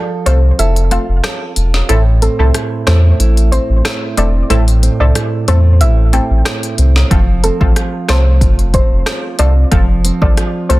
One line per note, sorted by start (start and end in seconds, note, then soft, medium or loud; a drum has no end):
0.00 1.89 F3 medium
0.00 0.26 C4 medium
0.00 0.90 F4 medium
0.00 0.58 A4 medium
0.26 0.52 C2 loud
0.26 0.40 A3 medium
0.26 0.40 C4 medium
0.26 2.21 C4 medium
0.26 0.40 F4 medium
0.26 0.40 A4 medium
0.26 0.40 C5 medium
0.26 closed hi-hat medium
0.59 0.98 F1 loud
0.59 1.24 A4 medium
0.59 0.72 E5 medium
0.59 closed hi-hat medium
0.76 closed hi-hat soft
0.91 1.05 A3 medium
0.91 1.05 C4 medium
0.91 1.55 F4 medium
0.91 1.05 F4 medium
0.91 1.05 A4 medium
0.91 1.05 F5 medium
0.91 closed hi-hat medium
1.09 1.21 F1 medium
1.24 4.74 A4 medium
1.24 cross-stick medium
1.24 snare loud
1.24 closed hi-hat medium
1.56 1.82 E1 medium
1.56 1.96 F4 medium
1.56 closed hi-hat medium
1.74 snare medium
1.89 2.28 A1 loud
1.89 4.49 A2 medium
1.89 2.03 A3 loud
1.89 2.03 C4 medium
1.89 2.03 E4 medium
1.89 2.03 A4 loud
1.89 closed hi-hat medium
2.22 3.52 C4 medium
2.22 2.35 A4 medium
2.22 closed hi-hat medium
2.39 2.51 C2 medium
2.39 2.51 A3 medium
2.39 2.51 C4 medium
2.39 2.51 E4 medium
2.39 2.51 A4 medium
2.54 3.19 E4 medium
2.54 cross-stick medium
2.54 closed hi-hat medium
2.87 3.12 E2 medium
2.87 5.47 A3 medium
2.87 3.01 A3 medium
2.87 3.01 C4 medium
2.87 3.01 E4 medium
2.87 3.01 A4 medium
2.87 3.00 C5 medium
2.87 cross-stick medium
2.87 snare loud
2.87 closed hi-hat medium
3.20 3.58 A1 loud
3.20 3.84 E4 medium
3.20 closed hi-hat medium
3.37 closed hi-hat medium
3.52 4.17 C4 medium
3.52 3.66 C5 medium
3.52 closed hi-hat medium
3.70 3.81 A1 medium
3.85 5.14 E4 medium
3.85 cross-stick medium
3.85 snare loud
3.85 closed hi-hat medium
4.17 4.43 E1 medium
4.17 4.31 A3 medium
4.17 4.31 C4 medium
4.17 4.82 C4 medium
4.17 4.31 E4 medium
4.17 4.31 A4 medium
4.17 4.31 D5 medium
4.17 closed hi-hat medium
4.50 4.89 A1 loud
4.50 7.11 A2 medium
4.50 4.64 A3 medium
4.50 4.64 C4 medium
4.50 4.64 E4 medium
4.50 4.64 A4 loud
4.50 closed hi-hat medium
4.68 closed hi-hat medium
4.83 6.13 C4 medium
4.83 closed hi-hat medium
5.00 5.12 C2 medium
5.00 5.12 A3 medium
5.00 5.12 C4 medium
5.00 5.12 E4 medium
5.00 5.12 A4 medium
5.00 5.12 D5 medium
5.15 5.79 E4 medium
5.15 cross-stick medium
5.15 closed hi-hat medium
5.48 5.82 E2 medium
5.48 8.09 A3 medium
5.48 5.62 A3 medium
5.48 5.62 C4 medium
5.48 5.62 E4 medium
5.48 5.62 A4 medium
5.48 5.62 C5 medium
5.48 closed hi-hat medium
5.80 6.19 A1 loud
5.80 6.45 E4 medium
5.80 5.94 E5 medium
5.80 closed hi-hat medium
6.13 6.27 A3 medium
6.13 6.27 C4 medium
6.13 6.78 C4 medium
6.13 6.27 E4 medium
6.13 6.27 A4 medium
6.13 6.27 G5 medium
6.13 closed hi-hat medium
6.30 6.42 A1 loud
6.45 7.18 E4 medium
6.45 cross-stick medium
6.45 snare loud
6.45 closed hi-hat medium
6.63 closed hi-hat medium
6.78 7.04 C2 medium
6.78 7.43 C4 medium
6.78 closed hi-hat medium
6.96 snare medium
7.11 7.50 F1 loud
7.11 9.71 F3 medium
7.11 7.24 A3 medium
7.11 7.25 C4 medium
7.11 7.25 F4 medium
7.11 7.25 A4 loud
7.11 kick loud
7.11 closed hi-hat medium
7.44 8.74 C4 medium
7.44 7.57 A4 medium
7.44 closed hi-hat medium
7.60 7.73 A1 medium
7.60 7.73 A3 medium
7.60 7.73 C4 medium
7.60 7.73 F4 medium
7.60 7.73 A4 medium
7.60 kick medium
7.76 8.40 F4 medium
7.76 cross-stick medium
7.76 closed hi-hat medium
8.09 8.43 C2 medium
8.09 8.22 A3 medium
8.09 10.69 A3 medium
8.09 8.22 C4 medium
8.09 8.23 F4 medium
8.09 8.23 A4 medium
8.09 8.23 C5 medium
8.09 cross-stick medium
8.09 snare loud
8.09 closed hi-hat medium
8.41 8.80 F1 loud
8.41 9.05 F4 medium
8.41 kick medium
8.41 closed hi-hat medium
8.59 closed hi-hat soft
8.74 9.39 C4 medium
8.74 8.88 C5 medium
8.74 kick medium
8.74 closed hi-hat medium
8.91 9.03 F1 medium
9.06 10.36 F4 medium
9.06 cross-stick medium
9.06 snare loud
9.06 closed hi-hat medium
9.39 9.65 C2 loud
9.39 9.53 A3 medium
9.39 9.53 C4 medium
9.39 10.04 C4 medium
9.39 9.53 F4 medium
9.39 9.53 A4 medium
9.39 9.53 D5 medium
9.39 closed hi-hat medium
9.71 10.11 F1 loud
9.71 10.80 F3 medium
9.71 9.85 A3 loud
9.71 9.85 C4 medium
9.71 9.85 F4 medium
9.71 9.86 A4 loud
9.71 kick loud
9.71 closed hi-hat medium
10.04 10.80 C4 medium
10.04 closed hi-hat medium
10.21 10.34 A1 medium
10.21 10.34 A3 medium
10.21 10.34 C4 medium
10.21 10.34 F4 medium
10.21 10.34 A4 medium
10.21 10.34 D5 medium
10.21 kick medium
10.37 10.80 F4 medium
10.37 cross-stick medium
10.37 closed hi-hat medium
10.69 10.80 C2 loud
10.69 10.80 A3 medium
10.69 10.80 C4 medium
10.69 10.80 F4 medium
10.69 10.80 A4 medium
10.69 10.80 C5 medium
10.69 closed hi-hat medium